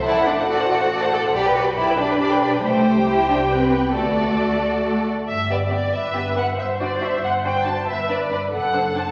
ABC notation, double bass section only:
X:1
M:6/8
L:1/8
Q:3/8=92
K:G
V:1 name="Double bass section" clef=bass
A,,,6 | B,,,6 | C,,6 | D,,4- D,, z |
G,,,3 G,,,3 | G,,,3 G,,,3 | G,,,3 F,,,3 |]